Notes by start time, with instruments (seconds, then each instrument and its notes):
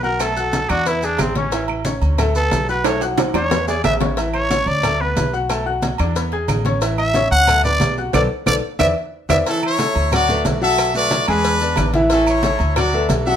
Already playing: upright bass B1
0.03 upright piano F#4 F#5 F#6, trumpet A#4, high conga, maracas
0.20 upright piano A3 A4 A5, trumpet A4, cowbell, high conga, low agogo, claves, maracas
0.37 upright piano F#4 F#5 F#6, high conga, maracas
0.53 cowbell, high conga, low timbale, low agogo, maracas
0.69 upright bass E2, upright piano D4 D5 D6, trumpet F#4, cowbell, low agogo, claves, maracas
0.86 upright piano B3 B4 B5, trumpet E4, cowbell, high conga, maracas
1.02 trumpet D4, upright piano G#4 G#5 G#6, high conga, low agogo, maracas
1.18 upright bass A1, trumpet C4, cowbell, high conga, low timbale, low agogo, claves, maracas
1.35 upright piano C#4 C#5 C#6, trumpet C#4, cowbell, high conga, maracas
1.52 upright piano E3 E4 E5, cowbell, high conga, low agogo, maracas
1.68 high conga, low agogo, claves
1.85 upright piano C#4 C#5 C#6, cowbell, high conga, low timbale, maracas
2.02 upright bass D2, high conga, low agogo, maracas
2.18 upright piano A3 A4 A5, cowbell, high conga, low conga, low agogo, claves, maracas
2.35 upright piano B3 B4 B5, trumpet A4, high conga, maracas
2.51 upright bass B1, cowbell, high conga, low timbale, low agogo, maracas
2.68 upright piano F#4 F#5 F#6, trumpet B4, high conga, maracas
2.84 upright piano A3 A4 A5, trumpet C#5, cowbell, high conga, high timbale, low agogo, claves, maracas
3.01 upright piano F#4 F#5 F#6, high conga, high timbale, maracas
3.18 cowbell, high bongo, high conga, high timbale, low agogo, maracas
3.34 upright bass E2, upright piano D4 D5 D6, trumpet C#5, cowbell, high bongo, high timbale, low agogo, claves, maracas
3.51 upright piano B3 B4 B5, cowbell, low bongo, high conga, low timbale, maracas
3.68 upright piano G#4 G#5 G#6, trumpet D5, high conga, low timbale, low agogo, maracas
3.84 upright bass A1, trumpet E5, cowbell, high conga, low timbale, low agogo, claves, maracas
4.01 upright piano C#4 C#5 C#6, cowbell, low bongo, high conga, low timbale, maracas
4.17 upright piano E3 E4 E5, cowbell, high conga, low agogo, maracas
4.34 trumpet C#5, high conga, low agogo, claves
4.50 upright piano C#4 C#5 C#6, cowbell, high conga, low timbale, maracas
4.66 upright bass D2, trumpet D5, high conga, low agogo, maracas
4.83 upright piano A3 A4 A5, cowbell, high conga, low conga, low agogo, claves, maracas
5.00 upright piano B3 B4 B5, trumpet B4, high conga
5.16 upright bass B1, cowbell, high conga, low timbale, low agogo, maracas
5.33 upright piano F#4 F#5 F#6, high conga, maracas
5.50 upright piano A3 A4 A5, cowbell, high conga, low agogo, claves, maracas
5.66 upright piano F#4 F#5 F#6, high conga
5.82 cowbell, high conga, low timbale, low agogo, maracas
5.98 upright bass E2, upright piano D4 D5 D6, cowbell, low agogo, claves, maracas
6.16 upright piano B3 B4 B5, cowbell, high conga, maracas
6.32 upright piano G#4 G#5 G#6, high conga, low agogo
6.48 upright bass A1, cowbell, high conga, low timbale, low agogo, claves, maracas
6.65 upright piano C#4 C#5 C#6, cowbell, high conga, maracas
6.81 upright piano E3 E4 E5, cowbell, high conga, low agogo, maracas
6.98 trumpet E5, high conga, low agogo, claves
7.14 upright piano C#4 C#5 C#6, cowbell, high conga, low timbale, maracas
7.31 upright bass D2, trumpet F#5, high conga, low agogo, maracas
7.47 upright piano A3 A4 A5, cowbell, high conga, low conga, low agogo, claves, maracas
7.64 upright piano B3 B4 B5, trumpet D5, high conga, low conga, maracas
7.80 upright bass B1, cowbell, high conga, low timbale, low agogo, maracas
7.98 upright piano F#4 F#5 F#6, high conga, maracas
8.13 upright bass B1, upright piano A4 B4 D5, trumpet D5, cowbell, high conga, high timbale, claves, maracas
8.46 upright bass B1, upright piano A4 B4 D5, trumpet D5, cowbell, high conga, high timbale, claves, maracas
8.79 upright bass E2, upright piano B4 D5 E5, trumpet E5, cowbell, high conga, high timbale, claves, maracas
9.29 upright bass E2, upright piano B4 D5 E5, trumpet E5, cowbell, high conga, high timbale, claves, maracas
9.46 upright piano E3 E4 E5, trumpet section C#4 A4, cowbell, high conga, low agogo, maracas
9.62 trumpet section E4 C#5, high conga, low agogo, claves
9.79 upright piano A3 A4 C#5, cowbell, high conga, low timbale, maracas
9.95 upright bass D2, high conga, low agogo, maracas
10.12 upright piano F#3 F#4 F#5, trumpet section F#4 D5, cowbell, high conga, low conga, low agogo, claves, maracas
10.28 upright piano A3 A4 B4, high conga, low conga, maracas
10.45 upright bass B1, cowbell, high conga, low timbale, low agogo, maracas
10.61 upright piano F#3 F#4 F#5, trumpet section A4 E5, high conga, maracas
10.78 cowbell, high conga, low agogo, claves, maracas
10.94 upright piano A3 A4 B4, trumpet section F#4 D5, high conga, maracas
11.11 cowbell, high conga, low timbale, low agogo, maracas
11.28 upright bass E2, upright piano G#3 G#4 G#5, trumpet section D4 B4, cowbell, low agogo, claves, maracas
11.44 cowbell, high conga, maracas
11.60 upright piano B3 B4 D5, high conga, low agogo, maracas
11.76 upright bass A1, cowbell, high conga, low timbale, low agogo, claves, maracas
11.93 upright piano E3 E4 E5, cowbell, high conga, maracas
12.10 upright piano E3 E4 E5, trumpet section C#4 A4, cowbell, high conga, low agogo, maracas
12.26 trumpet section E4 C#5, high conga, low agogo, claves, maracas
12.43 upright piano A3 A4 C#5, cowbell, high conga, low timbale, maracas
12.59 upright bass D2, high conga, low agogo, maracas
12.76 upright piano F#3 F#4 F#5, trumpet section F#4 D5, cowbell, high conga, low conga, low agogo, claves, maracas
12.93 upright piano A3 A4 B4, high conga
13.09 upright bass B1, cowbell, high conga, low timbale, low agogo, maracas
13.26 upright piano F#3 F#4 F#5, trumpet section A4 E5, high conga, maracas